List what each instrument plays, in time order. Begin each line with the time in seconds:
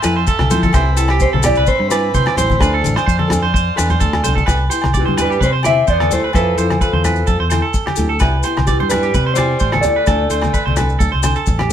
Already playing: transistor combo organ E5 F5 A5
0.02 fingered electric bass F2, nylon-string guitar C4 E4 A4, clean electric guitar B4, cross-stick, closed hi-hat, low agogo, maracas
0.16 clean electric guitar C5
0.27 clean electric guitar A4, kick, high conga, maracas
0.39 fingered electric bass C2, cross-stick, high conga, low agogo
0.50 fingered electric bass F3, nylon-string guitar C4 E4 A4, clean electric guitar C5, closed hi-hat, low conga, maracas
0.63 clean electric guitar A4, kick, high conga, maracas
0.73 fingered electric bass C2, nylon-string guitar B3 E4 G4, transistor combo organ C4 B5, clean electric guitar C5, kick, cross-stick, low agogo, maracas
0.97 nylon-string guitar E4 G4, clean electric guitar A4, closed hi-hat, maracas
1.08 clean electric guitar G4, cross-stick, low agogo
1.20 clean electric guitar C5, kick, maracas
1.33 fingered electric bass B1, clean electric guitar A4, high conga
1.43 nylon-string guitar E4 G4, clean electric guitar G4 D5, cross-stick, closed hi-hat, low conga, low agogo, maracas
1.55 fingered electric bass C2, clean electric guitar B4, maracas
1.67 clean electric guitar C5, kick, maracas
1.79 fingered electric bass G2, muted clean electric guitar stroke
1.89 nylon-string guitar E4, clean electric guitar B4 D5, muted nylon-string guitar stroke, cross-stick, closed hi-hat, low agogo, maracas
2.14 fingered electric bass C3, clean electric guitar C5, kick, high conga, maracas
2.26 clean electric guitar D5, cross-stick, low agogo
2.36 fingered electric bass A1, nylon-string guitar E4 G4, clean electric guitar C5, closed hi-hat, low conga, maracas
2.50 kick, high conga, maracas
2.59 fingered electric bass D2, nylon-string guitar F3 C4 D4 A4, clean electric guitar B4, transistor combo organ D5 F5 C6, kick, cross-stick, low agogo, maracas
2.74 clean electric guitar A4
2.82 nylon-string guitar C4 D4 A4, closed hi-hat, high conga
2.86 fingered electric bass A1, maracas
2.96 clean electric guitar C5, cross-stick, low agogo, maracas
3.07 fingered electric bass F2, clean electric guitar C5, kick, maracas
3.19 clean electric guitar A4, high conga
3.28 nylon-string guitar C4 D4 A4, cross-stick, closed hi-hat, low conga, low agogo
3.32 maracas
3.42 clean electric guitar C5
3.54 clean electric guitar C5, kick, maracas
3.76 fingered electric bass E2, nylon-string guitar C4 D4 A4, clean electric guitar B4, cross-stick, closed hi-hat, low agogo, maracas
3.90 clean electric guitar C5, low conga, maracas
4.00 fingered electric bass D2, clean electric guitar A4, kick, high conga, maracas
4.13 cross-stick, high conga, low agogo
4.24 fingered electric bass C2, nylon-string guitar C4 D4 A4, clean electric guitar C5, closed hi-hat, low conga, maracas
4.35 clean electric guitar A4, kick, high conga, maracas
4.46 fingered electric bass C2, nylon-string guitar G3 B3 G4, clean electric guitar B4, muted nylon-string guitar stroke, kick, cross-stick, low agogo, maracas
4.70 nylon-string guitar B3 E4 G4, clean electric guitar C5, closed hi-hat, maracas
4.82 fingered electric bass C2, cross-stick, high conga, low agogo
4.94 clean electric guitar G4 D5, kick, maracas
5.00 alto saxophone E3
5.06 fingered electric bass G2, clean electric guitar C5, high conga
5.16 nylon-string guitar B3 E4 G4, clean electric guitar B4, cross-stick, closed hi-hat, low conga, low agogo, maracas
5.21 alto saxophone G3, clean electric guitar B4
5.30 clean electric guitar G4, maracas
5.41 fingered electric bass C3, clean electric guitar B4 C5, kick, low conga, maracas
5.45 alto saxophone G3
5.53 clean electric guitar C5
5.63 nylon-string guitar B3 E4 G4, clean electric guitar D5 E5, cross-stick, closed hi-hat, high conga, low agogo, maracas
5.68 alto saxophone C4
5.87 fingered electric bass E2, clean electric guitar C5 D5, kick, maracas
5.92 alto saxophone B3
6.00 clean electric guitar A4, cross-stick, high conga, low agogo
6.11 alto saxophone A3, nylon-string guitar B3 E4 G4, clean electric guitar C5, closed hi-hat, low conga, maracas
6.24 clean electric guitar B4
6.33 fingered electric bass F2, nylon-string guitar E3 C4 E4 A4, alto saxophone F3, clean electric guitar A4 B4, kick, cross-stick, low agogo, maracas
6.55 fingered electric bass F2, alto saxophone F3, nylon-string guitar E4, clean electric guitar A4 C5, closed hi-hat, maracas
6.59 nylon-string guitar C4
6.70 cross-stick, high conga, low agogo
6.81 alto saxophone F3, clean electric guitar A4 B4, kick, maracas
6.93 fingered electric bass E2, clean electric guitar C5, high conga
7.03 nylon-string guitar C4 E4 A4, clean electric guitar B4, cross-stick, closed hi-hat, low conga, low agogo, maracas
7.16 maracas
7.27 fingered electric bass F2, clean electric guitar A4, kick, low conga, maracas
7.39 fingered electric bass E2, clean electric guitar C5
7.50 nylon-string guitar C4 E4 A4, clean electric guitar C5, cross-stick, closed hi-hat, high conga, low agogo, maracas
7.62 clean electric guitar A4
7.74 kick, maracas
7.86 clean electric guitar G4, cross-stick, high conga, low agogo
7.96 fingered electric bass D2, nylon-string guitar C4 E4 A4, closed hi-hat, low conga, maracas
8.09 clean electric guitar A4
8.19 fingered electric bass C2, nylon-string guitar G3 B3 E4 G4, clean electric guitar B4, kick, cross-stick, low agogo, maracas
8.43 nylon-string guitar B3 E4 G4, clean electric guitar C5, closed hi-hat, maracas
8.57 fingered electric bass C2, cross-stick, high conga, low agogo
8.67 alto saxophone E3, clean electric guitar G4 D5, kick, maracas
8.80 fingered electric bass G2, clean electric guitar C5, high conga
8.89 alto saxophone G3, nylon-string guitar B3 E4 G4, clean electric guitar B4, cross-stick, closed hi-hat, low conga, low agogo, maracas
9.03 clean electric guitar G4, maracas
9.14 fingered electric bass C3, clean electric guitar B4, kick, low conga, maracas
9.26 clean electric guitar C5
9.34 alto saxophone G3, clean electric guitar C5 D5, cross-stick, closed hi-hat, maracas
9.38 nylon-string guitar B3 E4 G4, high conga, low agogo
9.59 fingered electric bass A1, clean electric guitar C5, kick, maracas
9.72 clean electric guitar A4, cross-stick, high conga, low agogo
9.81 alto saxophone A3, nylon-string guitar G4, clean electric guitar D5, closed hi-hat, low conga, maracas
9.86 nylon-string guitar B3 E4
9.96 clean electric guitar B4
10.06 fingered electric bass D2, nylon-string guitar F3 C4 D4 A4, clean electric guitar A4, kick, cross-stick, low agogo, maracas
10.29 fingered electric bass D2, nylon-string guitar C4 D4 A4, clean electric guitar C5, closed hi-hat, maracas
10.42 cross-stick, high conga, low agogo, maracas
10.54 clean electric guitar B4, kick, maracas
10.66 fingered electric bass C2, clean electric guitar C5, high conga
10.76 nylon-string guitar C4 D4 A4, clean electric guitar B4, cross-stick, closed hi-hat, low conga, low agogo, maracas
10.89 maracas
10.99 fingered electric bass D2, clean electric guitar A4, kick, low conga, maracas
11.12 fingered electric bass C2, clean electric guitar C5
11.23 nylon-string guitar C4 D4 A4, clean electric guitar C5, cross-stick, closed hi-hat, high conga, low agogo, maracas
11.36 clean electric guitar A4, maracas
11.46 fingered electric bass A1, kick, low conga, maracas
11.59 clean electric guitar G4, cross-stick, high conga, low agogo
11.69 nylon-string guitar A4